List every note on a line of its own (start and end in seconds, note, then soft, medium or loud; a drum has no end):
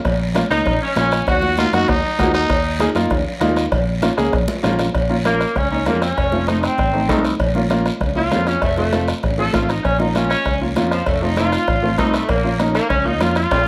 0.05 0.42 A#1 loud
0.05 bombo low medium
0.05 bombo rim medium
0.05 cowbell loud
0.05 long guiro medium
0.34 0.40 A#3 medium
0.34 0.41 C#4 medium
0.34 0.41 F4 medium
0.34 bombo rim medium
0.34 cowbell medium
0.34 high conga medium
0.34 short guiro medium
0.50 0.63 C#2 medium
0.50 0.67 A#3 medium
0.50 0.67 C#4 medium
0.50 0.79 D#4 loud
0.50 0.67 D#4 medium
0.50 bombo rim medium
0.50 short guiro medium
0.65 0.79 A#1 loud
0.65 bombo low medium
0.65 bombo rim medium
0.65 cowbell medium
0.65 low conga medium
0.65 long guiro medium
0.82 0.95 C#4 medium
0.96 1.21 A#1 loud
0.96 1.18 A#3 medium
0.96 1.25 C#4 medium
0.96 1.18 C#4 medium
0.96 1.18 F4 medium
0.96 bombo rim medium
0.96 cowbell medium
0.96 high conga medium
0.96 short guiro medium
1.12 bombo rim medium
1.12 short guiro medium
1.27 1.64 D#2 loud
1.27 1.56 F#4 loud
1.27 bombo low medium
1.27 bombo rim medium
1.27 cowbell loud
1.27 low conga medium
1.27 long guiro medium
1.42 high conga medium
1.57 1.63 A#3 medium
1.57 1.63 D#4 medium
1.57 1.75 F4 loud
1.57 1.64 F#4 medium
1.57 bombo rim medium
1.57 cowbell medium
1.57 high conga medium
1.57 short guiro medium
1.73 1.85 F#2 loud
1.73 1.89 A#3 medium
1.73 1.89 D#4 medium
1.73 1.90 F#4 loud
1.73 1.89 F#4 medium
1.73 bombo rim medium
1.73 short guiro medium
1.88 2.01 D#2 loud
1.88 2.33 D#4 loud
1.88 bombo low medium
1.88 bombo rim medium
1.88 cowbell medium
1.88 low conga medium
1.88 long guiro medium
2.19 2.44 D#2 loud
2.19 2.40 A#3 medium
2.19 2.41 D#4 medium
2.19 2.41 F#4 loud
2.19 bombo low medium
2.19 bombo rim medium
2.19 cowbell medium
2.19 high conga medium
2.19 low timbale medium
2.19 short guiro medium
2.34 2.91 D#4 loud
2.34 bombo rim medium
2.34 short guiro medium
2.49 2.86 D#2 loud
2.49 bombo low medium
2.49 bombo rim medium
2.49 cowbell loud
2.49 long guiro medium
2.80 2.85 A#3 loud
2.80 2.86 D#4 medium
2.80 2.86 G#4 loud
2.80 bombo rim medium
2.80 cowbell medium
2.80 high conga medium
2.80 short guiro medium
2.95 3.07 F#2 medium
2.95 3.11 A#3 medium
2.95 3.11 D#4 medium
2.95 3.12 F4 loud
2.95 bombo rim medium
2.95 short guiro medium
3.10 3.23 D#2 loud
3.10 bombo low medium
3.10 bombo rim medium
3.10 cowbell medium
3.10 low conga medium
3.10 long guiro medium
3.40 3.66 D#2 medium
3.40 3.62 A#3 medium
3.40 3.62 D#4 medium
3.40 3.63 F4 loud
3.40 bombo rim medium
3.40 cowbell medium
3.40 high conga medium
3.40 low timbale medium
3.40 short guiro medium
3.56 bombo rim medium
3.56 short guiro medium
3.72 4.09 A#1 loud
3.72 bombo low medium
3.72 bombo rim medium
3.72 cowbell loud
3.72 low conga medium
3.72 long guiro medium
4.02 4.08 A#3 medium
4.02 4.08 C#4 medium
4.02 4.08 F4 loud
4.02 bombo rim medium
4.02 cowbell medium
4.02 high conga medium
4.02 short guiro medium
4.17 4.30 C#2 medium
4.17 4.33 A#3 medium
4.17 4.34 C#4 medium
4.17 4.34 G#4 loud
4.17 bombo rim medium
4.17 short guiro medium
4.33 4.46 A#1 loud
4.33 bombo low medium
4.33 bombo rim medium
4.33 cowbell medium
4.33 low conga medium
4.33 long guiro medium
4.48 high conga loud
4.63 4.88 A#1 medium
4.63 4.85 A#3 medium
4.63 4.85 C#4 medium
4.63 4.85 F4 loud
4.63 bombo rim medium
4.63 cowbell medium
4.63 low conga medium
4.63 low timbale medium
4.63 short guiro medium
4.79 bombo rim medium
4.79 low conga medium
4.79 short guiro medium
4.95 5.44 A#1 loud
4.95 bombo low medium
4.95 bombo rim medium
4.95 cowbell loud
4.95 long guiro medium
5.09 5.15 A#3 medium
5.09 5.15 C#4 medium
5.09 5.15 F4 medium
5.24 5.41 A#3 medium
5.24 5.55 A#3 medium
5.24 5.41 C#4 medium
5.24 5.41 F4 medium
5.24 bombo rim medium
5.24 cowbell medium
5.24 high conga medium
5.24 short guiro medium
5.41 bombo rim medium
5.41 short guiro medium
5.56 5.88 C#2 medium
5.56 5.70 C#4 medium
5.56 bombo low medium
5.56 bombo rim medium
5.56 cowbell medium
5.56 low conga medium
5.56 long guiro medium
5.71 5.76 A#3 medium
5.71 5.86 C#4 medium
5.71 5.77 C#4 medium
5.71 5.77 D#4 medium
5.86 6.11 F2 medium
5.86 6.02 A#3 medium
5.86 6.01 A#3 medium
5.86 6.03 C#4 medium
5.86 6.03 F4 medium
5.86 bombo rim medium
5.86 cowbell medium
5.86 high conga medium
5.86 low timbale medium
5.86 short guiro medium
6.02 6.46 C#4 medium
6.02 bombo rim medium
6.02 short guiro medium
6.17 6.66 F1 medium
6.17 bombo low medium
6.17 bombo rim medium
6.17 cowbell loud
6.17 long guiro medium
6.32 6.38 A3 medium
6.32 6.38 C4 medium
6.32 6.38 F4 medium
6.32 high conga medium
6.47 6.64 A3 medium
6.47 6.64 C4 medium
6.47 6.62 D#4 medium
6.47 6.64 D#4 medium
6.47 bombo rim medium
6.47 cowbell medium
6.47 high conga medium
6.47 short guiro medium
6.62 7.22 C4 loud
6.62 bombo rim medium
6.62 short guiro medium
6.78 7.09 A1 medium
6.78 bombo low medium
6.78 bombo rim medium
6.78 cowbell medium
6.78 low conga medium
6.78 long guiro medium
6.93 6.99 A3 medium
6.93 6.99 C4 medium
6.93 6.99 D#4 medium
7.09 7.34 C2 medium
7.09 7.25 A3 medium
7.09 7.25 C4 medium
7.09 7.25 D#4 medium
7.09 bombo low medium
7.09 bombo rim medium
7.09 cowbell medium
7.09 high conga medium
7.09 low conga medium
7.09 low timbale medium
7.09 short guiro medium
7.25 bombo rim medium
7.25 short guiro medium
7.40 7.89 A#1 loud
7.40 bombo low medium
7.40 bombo rim medium
7.40 cowbell loud
7.40 long guiro medium
7.55 7.60 A#3 medium
7.55 7.60 C#4 medium
7.55 7.61 F4 medium
7.55 high conga medium
7.70 7.86 A#3 medium
7.70 7.86 C#4 medium
7.70 7.86 F4 medium
7.70 bombo rim medium
7.70 cowbell medium
7.70 high conga medium
7.70 short guiro medium
7.86 bombo rim medium
7.86 short guiro medium
8.00 8.33 C#2 medium
8.00 bombo low medium
8.00 bombo rim medium
8.00 cowbell medium
8.00 low conga medium
8.00 long guiro medium
8.15 8.21 A#3 medium
8.15 8.21 C#4 medium
8.15 8.21 F4 medium
8.15 8.46 F4 loud
8.31 8.56 F2 medium
8.31 8.47 A#3 medium
8.31 8.48 C#4 medium
8.31 8.48 F4 medium
8.31 bombo rim medium
8.31 cowbell medium
8.31 high conga medium
8.31 low timbale medium
8.31 short guiro medium
8.47 8.62 C#4 medium
8.47 bombo rim medium
8.47 short guiro medium
8.62 9.11 F1 loud
8.62 8.77 A3 medium
8.62 bombo low medium
8.62 bombo rim medium
8.62 cowbell loud
8.62 long guiro medium
8.77 8.82 A3 medium
8.77 9.07 A3 medium
8.77 8.83 C4 medium
8.77 8.83 F4 medium
8.77 high conga medium
8.92 9.09 A3 medium
8.92 9.09 C4 medium
8.92 9.09 F4 medium
8.92 bombo rim medium
8.92 cowbell medium
8.92 high conga medium
8.92 short guiro medium
9.08 bombo rim medium
9.08 short guiro medium
9.23 9.48 A1 medium
9.23 bombo low medium
9.23 bombo rim medium
9.23 cowbell medium
9.23 low conga medium
9.23 long guiro medium
9.38 9.44 A3 medium
9.38 9.44 C4 medium
9.38 9.44 F4 medium
9.38 9.53 A4 loud
9.53 9.79 A1 medium
9.53 9.69 A3 medium
9.53 9.70 C4 medium
9.53 9.70 F4 medium
9.53 9.69 F4 medium
9.53 bombo low medium
9.53 bombo rim medium
9.53 cowbell medium
9.53 high conga medium
9.53 low conga medium
9.53 short guiro medium
9.69 9.84 D#4 medium
9.69 bombo rim medium
9.69 short guiro medium
9.84 10.34 A#1 loud
9.84 9.99 C#4 medium
9.84 bombo low medium
9.84 bombo rim medium
9.84 cowbell loud
9.84 long guiro medium
9.99 10.05 A#3 medium
9.99 10.05 C#4 medium
9.99 10.14 D#4 medium
9.99 10.05 F4 medium
9.99 high conga medium
10.14 10.31 A#3 medium
10.14 10.29 C#4 medium
10.14 10.31 C#4 medium
10.14 10.32 F4 medium
10.14 bombo rim medium
10.14 cowbell medium
10.14 high conga medium
10.14 short guiro medium
10.30 10.60 C#4 loud
10.30 bombo rim medium
10.30 short guiro medium
10.45 10.77 C#2 medium
10.45 bombo low medium
10.45 bombo rim medium
10.45 cowbell medium
10.45 low conga medium
10.45 long guiro medium
10.61 10.66 A#3 medium
10.61 10.67 C#4 medium
10.61 10.67 F4 medium
10.76 11.01 F2 medium
10.76 10.92 A#3 medium
10.76 10.92 C#4 medium
10.76 10.93 F4 medium
10.76 bombo rim medium
10.76 cowbell medium
10.76 high conga medium
10.76 short guiro medium
10.91 11.06 F3 medium
10.91 bombo rim medium
10.91 short guiro medium
11.06 11.56 F1 loud
11.06 11.21 A3 medium
11.06 bombo low medium
11.06 bombo rim medium
11.06 cowbell loud
11.06 low conga medium
11.06 long guiro medium
11.22 11.27 A3 medium
11.22 11.28 C4 medium
11.22 11.37 D#4 medium
11.22 11.28 F4 medium
11.37 11.53 A3 medium
11.37 11.54 C4 medium
11.37 11.54 D#4 medium
11.37 11.97 F4 loud
11.37 bombo rim medium
11.37 cowbell medium
11.37 high conga medium
11.37 short guiro medium
11.53 bombo rim medium
11.53 short guiro medium
11.68 11.98 A1 medium
11.68 bombo low medium
11.68 bombo rim medium
11.68 cowbell medium
11.68 low conga medium
11.68 long guiro medium
11.82 11.88 A3 medium
11.82 11.88 C4 medium
11.82 11.88 F4 medium
11.98 12.23 C2 medium
11.98 12.14 A3 medium
11.98 12.14 C4 medium
11.98 12.13 D#4 medium
11.98 12.15 D#4 medium
11.98 bombo low medium
11.98 bombo rim medium
11.98 cowbell medium
11.98 high conga medium
11.98 short guiro medium
12.13 12.28 A3 medium
12.13 bombo rim medium
12.13 short guiro medium
12.29 12.78 A#1 loud
12.29 12.59 A#3 medium
12.29 bombo low medium
12.29 bombo rim medium
12.29 cowbell loud
12.29 long guiro medium
12.44 12.49 A#3 medium
12.44 12.50 C#4 medium
12.44 12.50 F4 medium
12.59 12.76 A#3 medium
12.59 12.76 C#4 medium
12.59 12.76 D#4 medium
12.59 bombo rim medium
12.59 cowbell medium
12.59 high conga medium
12.59 short guiro medium
12.74 12.89 A#3 loud
12.74 bombo rim medium
12.74 short guiro medium
12.89 13.20 C#2 loud
12.89 13.05 C#4 loud
12.89 bombo low medium
12.89 bombo rim medium
12.89 cowbell medium
12.89 low conga medium
12.89 long guiro medium
13.05 13.10 A#3 medium
13.05 13.11 C#4 medium
13.05 13.20 D#4 medium
13.05 13.11 F4 medium
13.20 13.45 F2 medium
13.20 13.36 A#3 medium
13.20 13.37 C#4 medium
13.20 13.35 F4 medium
13.20 13.37 F4 medium
13.20 bombo rim medium
13.20 cowbell medium
13.20 high conga medium
13.20 short guiro medium
13.35 13.68 F4 loud
13.35 bombo rim medium
13.35 short guiro medium
13.51 13.68 A#1 loud
13.51 bombo low medium
13.51 bombo rim medium
13.51 cowbell loud
13.51 high timbale medium
13.51 long guiro medium